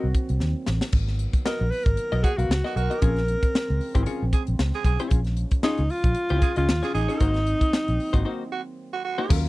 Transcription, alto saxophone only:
0.00 0.67 F#4 medium
1.46 1.73 A#4 loud
1.71 1.86 B4 loud
1.85 2.24 A#4 loud
2.23 2.39 G#4 medium
2.37 2.78 F#4 medium
2.77 4.33 A#4 loud
5.64 5.93 D#4 loud
5.91 6.57 F4 loud
6.58 6.92 F4 loud
6.94 8.74 D#4 loud

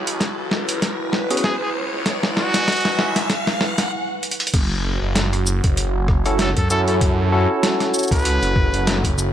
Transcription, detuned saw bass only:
0.00 0.35 C#2 medium
0.38 0.66 C#2 loud
0.69 0.97 C#2 medium
1.00 1.42 E1 loud
1.44 1.90 C#2 loud
1.93 2.52 C#2 medium
2.54 2.97 E1 loud
2.99 3.14 C#2 loud
3.16 3.28 G#1 loud
3.30 3.90 E1 loud
4.54 4.99 F#1 loud
5.02 5.61 F#1 medium
5.64 6.54 F#1 medium
6.57 7.47 F#2 loud
8.11 8.40 C#2 loud
8.42 8.71 F#1 loud
8.73 9.16 F#1 loud
9.18 9.33 F#1 loud

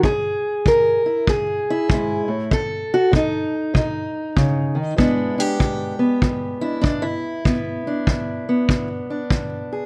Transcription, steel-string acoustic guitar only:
0.05 0.62 E2 medium
0.05 1.05 G#4 medium
0.67 1.24 E2 medium
0.67 1.29 A#4 medium
1.06 1.28 E4 soft
1.27 1.85 E2 medium
1.27 2.30 G#4 medium
1.70 1.91 E4 medium
1.89 2.29 G#2 medium
1.94 2.53 E4 medium
2.28 2.51 A2 medium
2.51 3.09 B2 medium
2.51 3.54 A4 medium
2.94 3.15 F#4 medium
3.12 3.70 B2 medium
3.16 3.75 D#4 medium
3.74 4.32 B2 medium
3.74 4.99 D#4 medium
4.36 4.76 C#3 medium
4.75 4.97 D#3 medium
4.97 5.55 E2 medium
4.97 7.90 G#3 soft
4.97 5.99 B3 soft
4.97 5.38 D4 soft
4.97 5.40 E4 soft
5.38 6.62 D4 soft
5.38 6.61 G4 medium
5.59 6.17 E2 medium
5.99 7.46 B3 soft
6.23 6.80 E2 medium
6.61 6.81 D4 soft
6.61 6.83 E4 medium
6.82 7.41 E2 medium
6.82 7.03 D4 medium
7.02 8.88 E4 medium
7.45 8.03 E2 medium
7.45 8.48 B3 soft
7.87 9.10 D4 soft
8.10 8.66 E2 medium
8.49 9.86 B3 soft
8.70 9.27 E2 medium
9.10 9.86 D4 soft
9.32 9.86 E2 medium
9.73 9.86 G#4 soft

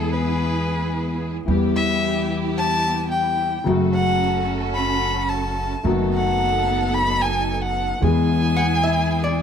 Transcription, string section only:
0.00 1.37 B3 medium
0.00 1.37 E4 medium
0.00 1.38 G#4 medium
1.48 3.55 B3 medium
1.48 3.55 E4 medium
1.48 3.55 G4 medium
3.66 5.73 C#4 medium
3.66 5.73 F#4 medium
3.66 5.73 A4 medium
5.84 7.91 B3 medium
5.84 7.91 D#4 medium
5.84 7.91 A4 medium
8.01 9.42 B3 medium
8.01 9.42 E4 medium
8.01 9.42 G#4 medium

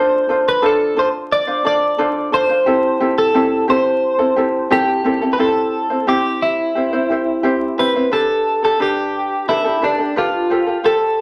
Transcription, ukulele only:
0.00 0.28 D4 medium
0.00 0.29 F4 medium
0.00 0.28 A4 medium
0.00 0.30 C5 medium
0.29 0.61 D4 medium
0.29 0.62 F4 medium
0.29 0.61 A4 medium
0.29 0.62 C5 medium
0.62 0.96 D4 medium
0.62 0.96 F4 medium
0.62 0.95 A4 medium
0.62 0.97 C5 medium
0.96 1.48 D4 medium
0.96 1.47 F4 medium
0.96 1.48 A4 medium
0.96 1.46 C5 medium
1.47 1.64 D4 soft
1.47 1.65 F4 medium
1.47 1.65 C5 medium
1.65 1.98 D4 medium
1.65 1.98 F4 medium
1.65 1.97 A4 medium
1.65 1.99 C5 medium
1.98 2.32 D4 medium
1.98 2.32 F4 medium
1.98 2.31 A4 medium
1.98 2.33 C5 medium
2.32 2.50 D4 medium
2.32 2.49 F4 medium
2.32 2.50 A4 medium
2.32 2.48 C5 medium
2.49 2.66 D4 soft
2.49 2.67 F4 soft
2.49 2.67 C5 medium
2.66 3.00 C4 medium
2.66 3.00 E4 medium
2.66 2.99 G4 medium
2.66 3.00 A4 medium
3.00 3.34 C4 medium
3.00 3.34 E4 medium
3.00 3.33 G4 medium
3.00 3.35 A4 medium
3.34 3.67 C4 medium
3.34 3.68 E4 medium
3.34 3.67 G4 medium
3.34 3.69 A4 medium
3.68 4.19 C4 medium
3.68 4.18 E4 medium
3.68 4.20 G4 medium
3.68 4.17 A4 medium
4.19 4.36 C4 soft
4.19 4.37 E4 soft
4.19 4.37 A4 medium
4.36 4.69 C4 medium
4.36 4.70 E4 medium
4.36 4.69 G4 medium
4.36 4.70 A4 medium
4.70 5.04 C4 medium
4.70 5.04 E4 medium
4.70 5.03 G4 medium
4.70 5.05 A4 medium
5.04 5.22 C4 medium
5.04 5.22 E4 medium
5.04 5.22 G4 medium
5.04 5.21 A4 medium
5.22 5.38 C4 soft
5.22 5.38 E4 soft
5.22 5.39 A4 medium
5.38 5.90 C4 medium
5.38 5.90 E4 medium
5.38 5.90 G4 medium
5.38 5.89 C5 medium
5.90 6.06 C4 soft
5.90 6.07 E4 soft
5.90 6.07 C5 soft
6.07 6.75 C4 medium
6.07 6.75 E4 medium
6.07 6.75 G4 medium
6.07 6.76 C5 medium
6.75 6.93 C4 medium
6.75 6.92 E4 medium
6.75 6.92 G4 medium
6.75 6.92 C5 medium
6.93 7.10 C4 soft
6.93 7.10 E4 soft
6.93 7.10 C5 medium
7.10 7.43 C4 medium
7.10 7.43 E4 medium
7.10 7.42 G4 medium
7.10 7.44 C5 medium
7.43 7.78 C4 medium
7.43 7.78 E4 medium
7.43 7.77 G4 medium
7.43 7.78 C5 medium
7.78 7.95 C4 medium
7.78 7.95 E4 medium
7.78 7.95 G4 medium
7.78 7.95 C5 medium
7.96 8.12 C4 soft
7.96 8.12 E4 soft
7.96 8.12 C5 soft
8.11 8.63 D4 medium
8.11 8.63 G4 medium
8.11 8.61 A4 medium
8.11 8.63 B4 medium
8.63 8.79 D4 soft
8.63 8.79 G4 soft
8.63 8.79 A4 soft
8.79 9.48 D4 medium
8.79 9.49 G4 medium
8.79 9.50 A4 medium
8.79 9.47 B4 medium
9.48 9.65 D4 medium
9.48 9.64 G4 medium
9.48 9.63 A4 medium
9.48 9.65 B4 medium
9.64 9.81 D4 soft
9.64 9.81 G4 soft
9.64 9.82 A4 medium
9.82 9.99 D4 medium
9.82 9.99 G4 medium
9.82 9.98 A4 medium
9.82 9.99 B4 medium
9.99 10.16 D4 soft
9.99 10.16 G4 soft
9.99 10.16 A4 soft
10.16 10.50 D4 medium
10.16 10.50 G4 medium
10.16 10.50 A4 medium
10.16 10.50 B4 medium
10.50 10.67 F4 medium
10.50 10.66 G4 medium
10.50 10.65 A4 medium
10.50 10.66 C5 medium
10.66 10.83 F4 soft
10.66 10.83 G4 soft
10.66 10.83 A4 soft
10.84 11.21 F4 medium
10.84 11.21 G4 medium
10.84 11.21 A4 medium
10.84 11.21 C5 medium

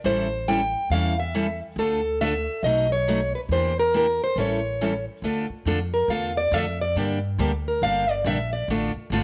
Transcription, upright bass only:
0.04 0.73 A1 medium
0.90 1.59 E2 medium
1.76 2.46 D2 medium
2.63 3.32 B1 medium
3.49 4.18 E2 medium
4.36 5.05 A1 medium
5.22 5.48 D2 medium
5.50 muted upright bass stroke soft
5.65 6.07 F2 medium
6.08 6.50 E2 medium
6.51 6.94 F2 medium
6.96 7.37 G2 medium
7.38 7.80 D2 medium
7.82 8.24 G1 medium
8.24 8.66 A#1 medium
8.68 8.93 A1 medium
8.95 muted upright bass stroke soft
9.10 9.23 G1 medium

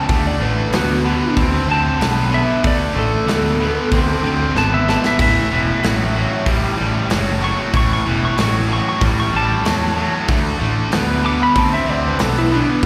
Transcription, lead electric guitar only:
0.00 0.26 A5 medium
0.27 0.42 D5 medium
0.42 0.73 B4 medium
0.76 1.37 F#4 loud
1.71 2.32 A5 loud
2.34 2.64 E5 medium
2.67 2.97 D5 medium
2.99 4.21 A4 loud
4.58 4.72 A5 loud
4.74 4.88 E5 medium
4.90 5.04 A5 medium
5.07 5.21 E5 medium
5.22 7.08 E5 loud
7.44 7.59 C#6 loud
7.77 7.91 C#6 loud
7.93 8.07 C#6 medium
8.25 8.39 C#6 medium
8.41 8.55 C#6 medium
8.73 8.87 C#6 medium
8.89 9.03 C#6 medium
9.20 9.34 C#6 medium
9.36 10.59 A5 loud
11.26 11.41 D6 loud
11.43 11.58 B5 medium
11.58 11.73 A5 medium
11.74 11.90 E5 medium
11.90 12.07 D5 loud
12.07 12.22 B4 medium
12.22 12.37 A4 loud
12.39 12.53 E4 loud
12.55 12.85 D4 medium

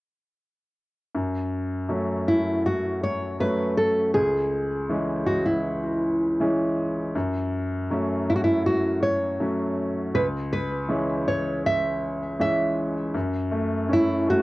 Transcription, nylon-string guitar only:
2.28 2.66 E4 medium
2.66 3.03 F#4 medium
3.04 3.38 C#5 medium
3.41 3.77 B4 medium
3.78 4.14 A4 medium
4.14 5.23 G#4 medium
5.27 5.44 F#4 medium
5.46 6.73 E4 medium
8.30 8.35 E4 medium
8.36 8.42 F#4 soft
8.44 8.66 E4 medium
8.66 9.02 F#4 medium
9.03 10.11 C#5 medium
10.15 10.25 B4 medium
10.53 11.27 B4 medium
11.28 11.66 C#5 medium
11.66 12.40 E5 medium
12.41 12.93 E5 medium
13.93 14.26 E4 medium
14.30 14.42 F#4 medium

